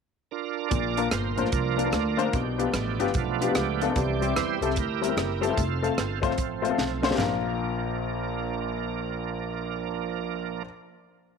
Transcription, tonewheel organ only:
0.31 1.08 D4 medium
0.31 0.69 F4 medium
0.31 0.69 A#4 medium
0.70 1.10 F4 medium
0.70 1.48 A#4 medium
0.70 1.08 D5 medium
1.11 1.51 F4 medium
1.11 1.53 C5 medium
1.36 1.89 F3 medium
1.36 1.90 A#3 soft
1.36 1.50 D4 medium
1.52 2.29 D4 medium
1.52 2.30 F4 medium
1.52 2.36 A#4 medium
2.35 3.12 D4 medium
2.35 3.12 G4 medium
2.60 3.92 F3 medium
2.60 3.93 A3 soft
2.60 3.93 B3 soft
3.17 3.55 D4 medium
3.17 3.41 F4 medium
3.42 3.48 F4 medium
3.56 3.93 D4 medium
3.56 3.95 G4 medium
3.96 4.59 E3 soft
3.96 4.59 G3 soft
3.96 4.60 C4 soft
3.96 4.35 G4 medium
3.96 4.34 D5 medium
4.36 4.77 E4 medium
4.36 4.77 G4 medium
4.36 4.78 C5 medium
4.78 5.55 E4 medium
4.78 5.55 G4 medium
4.78 5.46 A#4 medium
5.42 6.19 C4 medium
5.42 6.19 F4 medium
5.42 6.20 A4 medium
6.22 7.14 F3 medium
6.22 7.14 A3 soft
6.22 7.15 C4 medium
7.18 10.63 F3 medium
7.18 10.63 A#3 medium
7.18 10.63 D4 medium
7.18 10.62 A#4 medium

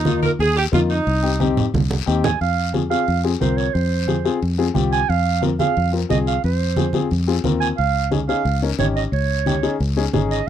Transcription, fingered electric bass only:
0.00 0.26 D#2 loud
0.39 0.66 D#2 medium
0.73 0.99 F2 loud
1.07 1.60 C2 loud
1.74 2.00 C2 medium
2.07 2.34 D#2 loud
2.41 2.94 F2 medium
3.08 3.35 F2 medium
3.42 3.68 C2 medium
3.75 4.29 F2 loud
4.42 4.69 F2 loud
4.76 5.03 C2 medium
5.09 5.63 F2 loud
5.77 6.04 F2 loud
6.11 6.37 C2 medium
6.44 6.98 F2 loud
7.12 7.38 F2 medium
7.45 7.72 D#2 medium
7.79 8.32 C#2 medium
8.45 8.72 C#2 medium
8.79 9.06 G#1 medium
9.12 9.66 C#2 medium
9.80 10.07 C#2 loud
10.14 10.41 G#1 medium

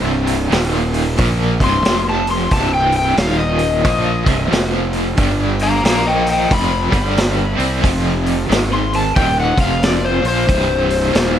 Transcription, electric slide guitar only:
1.64 2.07 C6 medium
2.09 2.30 A5 medium
2.31 2.52 C6 medium
2.53 2.74 A5 medium
2.74 2.96 G5 medium
2.97 3.18 G5 medium
3.19 3.39 F5 medium
3.39 4.69 D#5 medium
5.63 5.84 F5 medium
5.63 5.84 A#5 loud
5.85 6.05 F5 medium
5.85 6.06 A#5 medium
6.07 6.27 D#5 medium
6.07 6.29 G5 medium
6.30 6.50 D#5 medium
6.30 6.51 G5 medium
6.53 7.81 B5 medium
8.73 8.94 C6 medium
8.96 9.16 A5 medium
9.16 9.37 G5 medium
9.40 9.61 F#5 medium
9.61 9.82 F5 loud
9.84 10.04 D5 loud
10.05 10.26 C5 medium
10.28 11.39 C5 loud

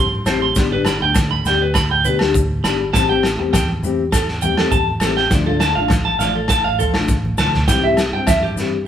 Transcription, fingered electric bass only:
0.00 0.22 G2 loud
0.26 0.54 A1 loud
0.56 0.99 G1 loud
1.01 1.43 D2 loud
1.45 2.60 D2 medium
2.64 2.92 G1 medium
2.94 3.36 A1 loud
3.38 3.80 E2 medium
3.83 4.97 E2 loud
5.01 5.29 A1 loud
5.31 5.73 D2 loud
5.75 6.17 A1 medium
6.21 7.35 A1 loud
7.37 7.66 D2 medium
7.68 8.11 C2 loud
8.13 8.54 G2 medium
8.56 8.87 G2 medium

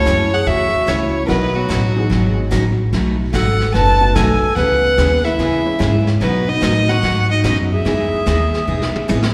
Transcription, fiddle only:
0.00 0.36 C#5 loud
0.34 0.48 F#5 loud
0.47 0.90 E5 loud
0.88 1.25 C#5 medium
1.26 1.30 A#4 medium
1.26 1.57 B4 medium
1.56 2.38 F#4 medium
3.33 3.71 F#5 loud
3.74 4.17 A5 loud
4.16 4.56 G#5 medium
4.57 5.26 F#5 loud
5.25 6.07 E5 loud
6.22 6.50 B4 medium
6.48 6.91 D#5 loud
6.89 7.30 F#5 loud
7.31 7.44 D#5 medium
7.45 7.57 D#5 medium
7.72 9.05 E5 medium

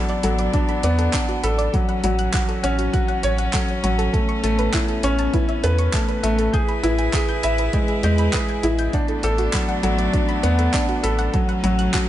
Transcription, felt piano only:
0.00 0.22 F#3 medium
0.00 0.54 D4 medium
0.00 1.44 A4 loud
0.23 0.52 F#3 loud
0.54 0.71 D4 medium
0.84 1.12 B3 loud
1.14 1.42 D4 medium
1.44 1.72 A4 loud
1.74 2.02 F#3 medium
2.04 2.32 F#3 loud
2.34 2.51 F#4 medium
2.64 2.92 C#4 loud
2.93 3.22 F#4 medium
3.24 3.52 C#5 loud
3.54 3.82 F#3 medium
3.84 4.12 F#3 loud
4.14 4.42 A3 medium
4.44 4.72 A3 loud
4.74 4.91 E4 medium
5.04 5.32 C#4 loud
5.34 5.62 E4 medium
5.64 5.92 B4 loud
5.94 6.22 A3 medium
6.23 6.52 A3 loud
6.54 6.71 G#4 medium
6.83 7.12 E4 loud
7.14 7.42 G#4 medium
7.44 7.72 E5 loud
7.74 8.02 G#3 medium
8.04 8.32 G#3 loud
8.34 8.51 G#4 medium
8.63 8.92 E4 loud
8.94 9.22 D4 medium
9.24 9.52 A4 loud
9.54 9.82 F#3 medium
9.83 10.12 F#3 loud
10.13 10.31 D4 medium
10.43 10.72 B3 loud
10.74 11.02 D4 medium
11.03 11.32 A4 loud
11.34 11.62 F#3 medium
11.64 11.92 F#3 loud
11.94 12.09 F#4 medium

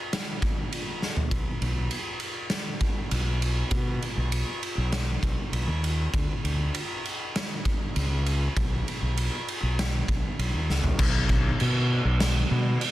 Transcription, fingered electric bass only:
1.31 1.44 B1 medium
1.61 1.87 B1 medium
3.12 3.62 B1 medium
3.71 3.97 B2 medium
4.17 4.43 B1 medium
4.78 5.16 B1 medium
5.23 5.35 B1 medium
5.52 5.65 B1 medium
5.68 6.06 D#2 medium
6.14 6.27 D2 medium
6.44 6.70 D2 medium
7.96 8.47 C#2 medium
8.57 8.82 B1 medium
9.02 9.28 B1 medium
9.63 10.01 B1 medium
10.09 10.22 B1 medium
10.39 10.52 B1 medium
10.54 10.68 D#2 medium
10.70 10.84 C#2 medium
10.85 10.99 B1 medium
11.00 11.51 B1 loud
11.61 11.99 B2 loud
12.05 12.43 B1 medium
12.51 12.76 B2 medium

